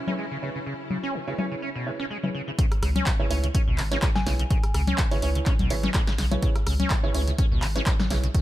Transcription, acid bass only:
0.08 0.14 C#4 loud
0.19 0.26 G#3 medium
0.31 0.38 C#3 medium
0.42 0.50 C#3 medium
0.55 0.59 C#3 medium
0.66 0.74 C#3 medium
0.90 0.98 C#3 medium
1.03 1.16 C#4 loud
1.14 1.19 C#3 loud
1.27 1.34 C#3 medium
1.39 1.46 C#4 medium
1.51 1.55 C#3 medium
1.62 1.70 C#4 medium
1.75 1.88 B2 medium
1.86 1.91 C#3 loud
2.00 2.06 C#4 loud
2.10 2.18 G#3 medium
2.23 2.30 C#3 medium
2.35 2.42 C#3 medium
2.48 2.51 C#3 medium
2.59 2.66 C#3 medium
2.83 2.90 C#3 medium
2.96 3.08 C#4 loud
3.07 3.11 C#3 loud
3.20 3.26 C#3 medium
3.31 3.38 C#4 medium
3.44 3.47 C#3 medium
3.54 3.62 C#4 medium
3.68 3.80 B2 medium
3.78 3.83 C#3 loud
3.91 3.98 C#4 loud
4.03 4.10 G#3 medium
4.15 4.22 C#3 medium
4.27 4.34 C#3 medium
4.40 4.43 C#3 medium
4.51 4.58 C#3 medium
4.75 4.82 C#3 medium
4.88 5.00 C#4 loud
4.99 5.03 C#3 loud
5.12 5.18 C#3 medium
5.23 5.30 C#4 medium
5.36 5.39 C#3 medium
5.47 5.54 C#4 medium
5.60 5.72 B2 medium
5.71 5.75 C#3 loud
5.84 5.90 C#4 loud
5.95 6.02 G#3 medium
6.08 6.14 C#3 medium
6.19 6.26 C#3 medium
6.32 6.35 C#3 medium
6.43 6.50 C#3 medium
6.67 6.74 C#3 medium
6.80 6.92 C#4 loud
6.91 6.95 C#3 loud
7.04 7.10 C#3 medium
7.15 7.22 C#4 medium
7.28 7.31 C#3 medium
7.39 7.46 C#4 medium
7.52 7.64 B2 medium
7.63 7.67 C#3 loud
7.76 7.82 C#4 loud
7.87 7.94 G#3 medium
8.00 8.06 C#3 medium
8.11 8.18 C#3 medium
8.24 8.27 C#3 medium
8.35 8.42 C#3 medium

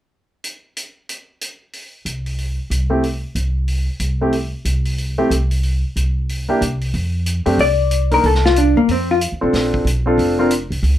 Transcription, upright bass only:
2.05 2.57 C2 medium
2.70 3.22 C2 medium
3.35 3.87 C2 medium
4.00 4.52 C2 medium
4.65 5.17 C2 medium
5.30 5.82 C2 medium
5.96 6.47 C2 medium
6.61 6.91 C2 medium
6.94 7.43 F2 medium
7.46 7.57 F#2 medium
7.58 8.20 C2 medium
8.24 8.73 C2 medium
8.76 8.88 F#2 medium
8.89 9.29 F2 medium
9.32 9.42 D#2 soft
9.43 9.53 B1 medium
9.53 9.84 A#1 medium
9.85 10.15 B1 medium
10.18 10.67 F1 medium
10.70 10.82 C2 medium
10.83 10.98 C#2 medium

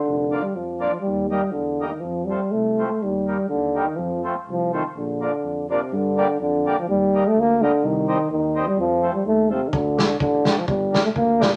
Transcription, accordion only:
0.32 0.43 F3 soft
0.32 0.43 A#3 soft
0.32 0.43 D4 soft
0.80 0.92 F3 medium
0.80 0.91 A#3 soft
0.80 0.92 D4 medium
1.31 1.42 G3 soft
1.31 1.42 A#3 soft
1.31 1.42 D#4 soft
1.81 1.91 G3 soft
1.81 1.91 A#3 soft
1.81 1.91 D#4 soft
2.30 2.40 F3 soft
2.30 2.40 A3 soft
2.30 2.41 C4 soft
2.78 2.89 F3 soft
2.78 2.89 A3 soft
2.78 2.89 C4 medium
3.28 3.38 D#3 soft
3.28 3.38 G3 soft
3.28 3.38 A#3 soft
3.75 3.86 D#3 soft
3.75 3.86 G3 soft
3.75 3.86 A#3 medium
4.24 4.35 F3 soft
4.24 4.34 A3 soft
4.24 4.35 C4 soft
4.73 4.83 F3 soft
4.73 4.83 A3 soft
4.73 4.83 C4 medium
5.21 5.31 F3 soft
5.21 5.31 A#3 soft
5.21 5.32 D4 soft
5.70 5.80 F3 medium
5.70 5.81 A#3 soft
5.70 5.80 D4 medium
6.17 6.28 G3 medium
6.17 6.28 A#3 soft
6.17 6.28 D4 medium
6.66 6.76 G3 medium
6.66 6.76 A#3 medium
6.66 6.76 D4 medium
7.14 7.24 G3 medium
7.14 7.24 A#3 soft
7.14 7.24 D#4 medium
7.62 7.72 G3 medium
7.62 7.72 A#3 medium
7.62 7.72 D#4 medium
8.08 8.18 G3 medium
8.08 8.18 C4 soft
8.08 8.18 D#4 medium
8.56 8.66 G3 medium
8.56 8.66 C4 medium
8.56 8.66 D#4 medium
9.02 9.13 F3 medium
9.02 9.13 A3 soft
9.02 9.13 C4 medium
9.50 9.61 F3 medium
9.50 9.61 A3 soft
9.50 9.61 C4 medium
9.98 10.08 G3 soft
9.98 10.08 A3 medium
9.98 10.08 D4 medium
10.45 10.56 G3 medium
10.45 10.56 A3 medium
10.45 10.56 D4 medium
10.92 11.03 G3 medium
10.92 11.03 A#3 medium
10.92 11.03 D4 medium
11.40 11.50 G3 medium
11.40 11.50 A#3 soft
11.40 11.50 D4 medium

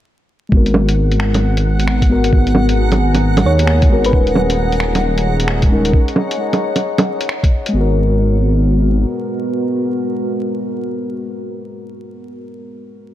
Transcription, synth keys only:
0.49 2.07 G#3 medium
0.49 2.08 B3 medium
0.54 2.09 F#4 medium
0.54 2.10 A#4 medium
2.08 2.28 G#3 medium
2.08 2.30 B3 medium
2.08 2.31 F#4 medium
2.08 2.32 A#4 loud
2.29 3.87 G#3 medium
2.34 3.89 F#4 medium
2.34 3.91 A#4 medium
3.89 4.08 G#3 loud
3.89 4.11 B3 medium
3.89 4.12 F#4 medium
3.93 4.13 A#4 loud
4.10 5.67 G#3 medium
4.10 5.69 C#4 medium
4.14 5.70 D#4 medium
4.14 5.71 A#4 medium
5.69 5.91 G#3 medium
5.69 5.91 C#4 medium
5.69 5.92 D#4 medium
5.73 5.93 A#4 loud
7.69 11.88 G#3 medium
7.69 11.92 B3 medium
7.76 11.96 F#4 medium
7.80 12.00 A#4 medium

